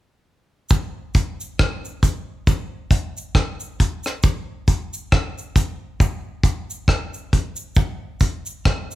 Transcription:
0, 0, Header, 1, 2, 480
1, 0, Start_track
1, 0, Tempo, 882872
1, 383, Time_signature, 4, 2, 24, 8
1, 4866, End_track
2, 0, Start_track
2, 0, Title_t, "Drums"
2, 378, Note_on_c, 9, 69, 76
2, 384, Note_on_c, 9, 36, 109
2, 432, Note_off_c, 9, 69, 0
2, 438, Note_off_c, 9, 36, 0
2, 622, Note_on_c, 9, 69, 44
2, 624, Note_on_c, 9, 42, 74
2, 625, Note_on_c, 9, 36, 93
2, 676, Note_off_c, 9, 69, 0
2, 678, Note_off_c, 9, 42, 0
2, 679, Note_off_c, 9, 36, 0
2, 764, Note_on_c, 9, 69, 64
2, 819, Note_off_c, 9, 69, 0
2, 866, Note_on_c, 9, 37, 113
2, 867, Note_on_c, 9, 36, 106
2, 921, Note_off_c, 9, 36, 0
2, 921, Note_off_c, 9, 37, 0
2, 1006, Note_on_c, 9, 69, 46
2, 1060, Note_off_c, 9, 69, 0
2, 1103, Note_on_c, 9, 36, 94
2, 1105, Note_on_c, 9, 69, 72
2, 1107, Note_on_c, 9, 42, 73
2, 1157, Note_off_c, 9, 36, 0
2, 1159, Note_off_c, 9, 69, 0
2, 1161, Note_off_c, 9, 42, 0
2, 1344, Note_on_c, 9, 36, 108
2, 1345, Note_on_c, 9, 69, 70
2, 1398, Note_off_c, 9, 36, 0
2, 1400, Note_off_c, 9, 69, 0
2, 1580, Note_on_c, 9, 36, 97
2, 1582, Note_on_c, 9, 69, 49
2, 1584, Note_on_c, 9, 42, 75
2, 1635, Note_off_c, 9, 36, 0
2, 1636, Note_off_c, 9, 69, 0
2, 1639, Note_off_c, 9, 42, 0
2, 1724, Note_on_c, 9, 69, 64
2, 1779, Note_off_c, 9, 69, 0
2, 1820, Note_on_c, 9, 36, 96
2, 1823, Note_on_c, 9, 37, 98
2, 1875, Note_off_c, 9, 36, 0
2, 1878, Note_off_c, 9, 37, 0
2, 1958, Note_on_c, 9, 69, 54
2, 2013, Note_off_c, 9, 69, 0
2, 2066, Note_on_c, 9, 36, 83
2, 2066, Note_on_c, 9, 42, 62
2, 2120, Note_off_c, 9, 36, 0
2, 2120, Note_off_c, 9, 42, 0
2, 2194, Note_on_c, 9, 69, 67
2, 2207, Note_on_c, 9, 37, 59
2, 2249, Note_off_c, 9, 69, 0
2, 2262, Note_off_c, 9, 37, 0
2, 2300, Note_on_c, 9, 69, 71
2, 2303, Note_on_c, 9, 36, 111
2, 2355, Note_off_c, 9, 69, 0
2, 2358, Note_off_c, 9, 36, 0
2, 2543, Note_on_c, 9, 36, 93
2, 2543, Note_on_c, 9, 42, 71
2, 2544, Note_on_c, 9, 69, 45
2, 2598, Note_off_c, 9, 36, 0
2, 2598, Note_off_c, 9, 42, 0
2, 2599, Note_off_c, 9, 69, 0
2, 2683, Note_on_c, 9, 69, 70
2, 2738, Note_off_c, 9, 69, 0
2, 2785, Note_on_c, 9, 37, 104
2, 2786, Note_on_c, 9, 36, 107
2, 2839, Note_off_c, 9, 37, 0
2, 2840, Note_off_c, 9, 36, 0
2, 2926, Note_on_c, 9, 69, 47
2, 2980, Note_off_c, 9, 69, 0
2, 3021, Note_on_c, 9, 36, 97
2, 3024, Note_on_c, 9, 69, 71
2, 3025, Note_on_c, 9, 42, 69
2, 3076, Note_off_c, 9, 36, 0
2, 3078, Note_off_c, 9, 69, 0
2, 3079, Note_off_c, 9, 42, 0
2, 3263, Note_on_c, 9, 36, 106
2, 3267, Note_on_c, 9, 69, 67
2, 3317, Note_off_c, 9, 36, 0
2, 3321, Note_off_c, 9, 69, 0
2, 3499, Note_on_c, 9, 36, 100
2, 3501, Note_on_c, 9, 42, 77
2, 3502, Note_on_c, 9, 69, 50
2, 3553, Note_off_c, 9, 36, 0
2, 3555, Note_off_c, 9, 42, 0
2, 3557, Note_off_c, 9, 69, 0
2, 3644, Note_on_c, 9, 69, 67
2, 3699, Note_off_c, 9, 69, 0
2, 3740, Note_on_c, 9, 36, 98
2, 3745, Note_on_c, 9, 37, 103
2, 3794, Note_off_c, 9, 36, 0
2, 3800, Note_off_c, 9, 37, 0
2, 3881, Note_on_c, 9, 69, 51
2, 3935, Note_off_c, 9, 69, 0
2, 3985, Note_on_c, 9, 36, 83
2, 3987, Note_on_c, 9, 42, 60
2, 4039, Note_off_c, 9, 36, 0
2, 4041, Note_off_c, 9, 42, 0
2, 4110, Note_on_c, 9, 69, 72
2, 4165, Note_off_c, 9, 69, 0
2, 4215, Note_on_c, 9, 69, 66
2, 4222, Note_on_c, 9, 36, 113
2, 4270, Note_off_c, 9, 69, 0
2, 4276, Note_off_c, 9, 36, 0
2, 4459, Note_on_c, 9, 69, 48
2, 4462, Note_on_c, 9, 36, 86
2, 4463, Note_on_c, 9, 42, 73
2, 4513, Note_off_c, 9, 69, 0
2, 4517, Note_off_c, 9, 36, 0
2, 4517, Note_off_c, 9, 42, 0
2, 4600, Note_on_c, 9, 69, 64
2, 4654, Note_off_c, 9, 69, 0
2, 4705, Note_on_c, 9, 36, 106
2, 4705, Note_on_c, 9, 37, 109
2, 4760, Note_off_c, 9, 36, 0
2, 4760, Note_off_c, 9, 37, 0
2, 4845, Note_on_c, 9, 69, 46
2, 4866, Note_off_c, 9, 69, 0
2, 4866, End_track
0, 0, End_of_file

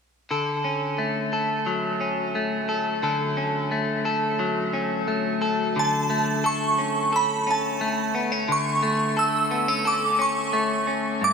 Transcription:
0, 0, Header, 1, 3, 480
1, 0, Start_track
1, 0, Key_signature, 2, "major"
1, 0, Tempo, 681818
1, 215, Time_signature, 4, 2, 24, 8
1, 7978, End_track
2, 0, Start_track
2, 0, Title_t, "Synth bell"
2, 0, Program_c, 0, 98
2, 4079, Note_on_c, 0, 81, 80
2, 4548, Note_on_c, 0, 85, 90
2, 4561, Note_off_c, 0, 81, 0
2, 5036, Note_off_c, 0, 85, 0
2, 5040, Note_on_c, 0, 83, 76
2, 5274, Note_off_c, 0, 83, 0
2, 5284, Note_on_c, 0, 81, 68
2, 5721, Note_off_c, 0, 81, 0
2, 5999, Note_on_c, 0, 85, 81
2, 6470, Note_on_c, 0, 88, 87
2, 6481, Note_off_c, 0, 85, 0
2, 6951, Note_on_c, 0, 86, 75
2, 6956, Note_off_c, 0, 88, 0
2, 7190, Note_off_c, 0, 86, 0
2, 7192, Note_on_c, 0, 85, 73
2, 7635, Note_off_c, 0, 85, 0
2, 7914, Note_on_c, 0, 86, 95
2, 7978, Note_off_c, 0, 86, 0
2, 7978, End_track
3, 0, Start_track
3, 0, Title_t, "Clean electric guitar"
3, 0, Program_c, 1, 27
3, 216, Note_on_c, 1, 50, 60
3, 219, Note_on_c, 1, 69, 54
3, 454, Note_on_c, 1, 61, 46
3, 693, Note_on_c, 1, 57, 51
3, 933, Note_off_c, 1, 69, 0
3, 935, Note_on_c, 1, 69, 51
3, 1171, Note_on_c, 1, 54, 53
3, 1410, Note_off_c, 1, 61, 0
3, 1413, Note_on_c, 1, 61, 46
3, 1653, Note_off_c, 1, 57, 0
3, 1656, Note_on_c, 1, 57, 48
3, 1889, Note_off_c, 1, 69, 0
3, 1892, Note_on_c, 1, 69, 50
3, 2129, Note_off_c, 1, 50, 0
3, 2132, Note_on_c, 1, 50, 67
3, 2134, Note_off_c, 1, 69, 0
3, 2136, Note_on_c, 1, 69, 50
3, 2370, Note_off_c, 1, 61, 0
3, 2373, Note_on_c, 1, 61, 51
3, 2612, Note_off_c, 1, 57, 0
3, 2615, Note_on_c, 1, 57, 56
3, 2850, Note_off_c, 1, 69, 0
3, 2853, Note_on_c, 1, 69, 56
3, 3089, Note_off_c, 1, 54, 0
3, 3092, Note_on_c, 1, 54, 60
3, 3329, Note_off_c, 1, 61, 0
3, 3332, Note_on_c, 1, 61, 49
3, 3571, Note_off_c, 1, 57, 0
3, 3574, Note_on_c, 1, 57, 54
3, 3810, Note_off_c, 1, 69, 0
3, 3813, Note_on_c, 1, 69, 57
3, 4053, Note_off_c, 1, 50, 0
3, 4056, Note_on_c, 1, 50, 69
3, 4291, Note_off_c, 1, 57, 0
3, 4293, Note_on_c, 1, 57, 51
3, 4532, Note_off_c, 1, 69, 0
3, 4534, Note_on_c, 1, 69, 61
3, 4773, Note_off_c, 1, 61, 0
3, 4776, Note_on_c, 1, 61, 44
3, 5013, Note_off_c, 1, 69, 0
3, 5016, Note_on_c, 1, 69, 53
3, 5250, Note_off_c, 1, 61, 0
3, 5259, Note_on_c, 1, 61, 49
3, 5495, Note_off_c, 1, 57, 0
3, 5498, Note_on_c, 1, 57, 54
3, 5556, Note_off_c, 1, 54, 0
3, 5732, Note_off_c, 1, 61, 0
3, 5735, Note_on_c, 1, 59, 51
3, 5856, Note_off_c, 1, 59, 0
3, 5856, Note_on_c, 1, 61, 42
3, 5970, Note_off_c, 1, 50, 0
3, 5972, Note_on_c, 1, 50, 67
3, 6211, Note_off_c, 1, 57, 0
3, 6214, Note_on_c, 1, 57, 52
3, 6452, Note_off_c, 1, 69, 0
3, 6455, Note_on_c, 1, 69, 62
3, 6691, Note_off_c, 1, 61, 0
3, 6694, Note_on_c, 1, 59, 53
3, 6816, Note_off_c, 1, 59, 0
3, 6816, Note_on_c, 1, 61, 48
3, 6933, Note_off_c, 1, 69, 0
3, 6936, Note_on_c, 1, 69, 57
3, 7164, Note_off_c, 1, 61, 0
3, 7173, Note_on_c, 1, 61, 51
3, 7411, Note_off_c, 1, 57, 0
3, 7413, Note_on_c, 1, 57, 57
3, 7646, Note_off_c, 1, 61, 0
3, 7654, Note_on_c, 1, 61, 48
3, 7895, Note_on_c, 1, 43, 72
3, 7942, Note_off_c, 1, 61, 0
3, 7978, Note_off_c, 1, 43, 0
3, 7978, Note_off_c, 1, 50, 0
3, 7978, Note_off_c, 1, 57, 0
3, 7978, Note_off_c, 1, 69, 0
3, 7978, End_track
0, 0, End_of_file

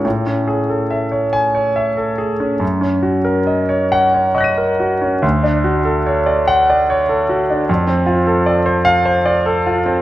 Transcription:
0, 0, Header, 1, 2, 480
1, 0, Start_track
1, 0, Tempo, 864553
1, 27, Time_signature, 6, 3, 24, 8
1, 2907, Tempo, 831025
1, 3867, Tempo, 791557
1, 5759, End_track
2, 0, Start_track
2, 0, Title_t, "Grand piano"
2, 0, Program_c, 0, 0
2, 0, Control_c, 0, 64, 127
2, 26, Note_on_c, 0, 45, 53
2, 37, Control_c, 0, 64, 0
2, 130, Control_c, 0, 64, 127
2, 147, Note_on_c, 0, 61, 44
2, 264, Note_on_c, 0, 68, 42
2, 335, Note_off_c, 0, 61, 0
2, 384, Note_on_c, 0, 69, 44
2, 452, Note_off_c, 0, 68, 0
2, 503, Note_on_c, 0, 76, 45
2, 572, Note_off_c, 0, 69, 0
2, 620, Note_on_c, 0, 73, 47
2, 691, Note_off_c, 0, 76, 0
2, 737, Note_on_c, 0, 80, 67
2, 811, Note_off_c, 0, 73, 0
2, 858, Note_on_c, 0, 73, 50
2, 930, Note_off_c, 0, 80, 0
2, 976, Note_on_c, 0, 76, 50
2, 1051, Note_off_c, 0, 73, 0
2, 1093, Note_on_c, 0, 69, 41
2, 1169, Note_off_c, 0, 76, 0
2, 1211, Note_on_c, 0, 68, 47
2, 1286, Note_off_c, 0, 69, 0
2, 1333, Note_on_c, 0, 61, 44
2, 1403, Note_off_c, 0, 68, 0
2, 1431, Note_off_c, 0, 45, 0
2, 1442, Note_on_c, 0, 42, 57
2, 1452, Note_off_c, 0, 61, 0
2, 1464, Control_c, 0, 64, 0
2, 1560, Note_on_c, 0, 61, 49
2, 1561, Control_c, 0, 64, 127
2, 1680, Note_on_c, 0, 66, 46
2, 1757, Note_off_c, 0, 61, 0
2, 1802, Note_on_c, 0, 70, 50
2, 1879, Note_off_c, 0, 66, 0
2, 1925, Note_on_c, 0, 75, 47
2, 2004, Note_off_c, 0, 70, 0
2, 2048, Note_on_c, 0, 73, 47
2, 2127, Note_off_c, 0, 75, 0
2, 2175, Note_on_c, 0, 78, 75
2, 2249, Note_off_c, 0, 73, 0
2, 2300, Note_on_c, 0, 73, 52
2, 2373, Note_off_c, 0, 78, 0
2, 2413, Note_on_c, 0, 75, 50
2, 2413, Note_on_c, 0, 85, 42
2, 2432, Note_on_c, 0, 90, 41
2, 2446, Note_on_c, 0, 94, 44
2, 2465, Note_on_c, 0, 99, 41
2, 2495, Note_off_c, 0, 73, 0
2, 2541, Note_on_c, 0, 70, 44
2, 2612, Note_off_c, 0, 75, 0
2, 2664, Note_on_c, 0, 66, 49
2, 2737, Note_off_c, 0, 70, 0
2, 2784, Note_on_c, 0, 61, 49
2, 2857, Note_off_c, 0, 66, 0
2, 2878, Note_off_c, 0, 42, 0
2, 2879, Note_off_c, 0, 85, 0
2, 2888, Note_off_c, 0, 90, 0
2, 2895, Note_off_c, 0, 94, 0
2, 2900, Note_on_c, 0, 38, 60
2, 2905, Note_off_c, 0, 61, 0
2, 2905, Note_off_c, 0, 99, 0
2, 2916, Control_c, 0, 64, 0
2, 3021, Note_on_c, 0, 62, 55
2, 3022, Control_c, 0, 64, 127
2, 3141, Note_on_c, 0, 66, 53
2, 3216, Note_off_c, 0, 62, 0
2, 3261, Note_on_c, 0, 69, 54
2, 3335, Note_off_c, 0, 66, 0
2, 3386, Note_on_c, 0, 73, 50
2, 3455, Note_off_c, 0, 69, 0
2, 3501, Note_on_c, 0, 74, 51
2, 3577, Note_off_c, 0, 73, 0
2, 3623, Note_on_c, 0, 78, 80
2, 3696, Note_off_c, 0, 74, 0
2, 3750, Note_on_c, 0, 74, 56
2, 3817, Note_off_c, 0, 78, 0
2, 3867, Note_on_c, 0, 73, 62
2, 3943, Note_off_c, 0, 74, 0
2, 3984, Note_on_c, 0, 69, 51
2, 4063, Note_off_c, 0, 73, 0
2, 4107, Note_on_c, 0, 66, 52
2, 4180, Note_off_c, 0, 69, 0
2, 4233, Note_on_c, 0, 62, 53
2, 4298, Note_off_c, 0, 66, 0
2, 4320, Note_off_c, 0, 38, 0
2, 4349, Note_off_c, 0, 62, 0
2, 4349, Note_on_c, 0, 41, 67
2, 4356, Control_c, 0, 64, 0
2, 4446, Control_c, 0, 64, 127
2, 4459, Note_on_c, 0, 60, 55
2, 4574, Note_on_c, 0, 65, 60
2, 4649, Note_off_c, 0, 60, 0
2, 4697, Note_on_c, 0, 69, 56
2, 4765, Note_off_c, 0, 65, 0
2, 4816, Note_on_c, 0, 74, 62
2, 4886, Note_off_c, 0, 69, 0
2, 4935, Note_on_c, 0, 72, 60
2, 5005, Note_off_c, 0, 74, 0
2, 5050, Note_on_c, 0, 77, 92
2, 5126, Note_off_c, 0, 72, 0
2, 5175, Note_on_c, 0, 72, 62
2, 5245, Note_off_c, 0, 77, 0
2, 5297, Note_on_c, 0, 74, 66
2, 5369, Note_off_c, 0, 72, 0
2, 5420, Note_on_c, 0, 69, 61
2, 5492, Note_off_c, 0, 74, 0
2, 5545, Note_on_c, 0, 65, 59
2, 5615, Note_off_c, 0, 69, 0
2, 5662, Note_on_c, 0, 60, 54
2, 5739, Note_off_c, 0, 65, 0
2, 5759, Note_off_c, 0, 41, 0
2, 5759, Note_off_c, 0, 60, 0
2, 5759, End_track
0, 0, End_of_file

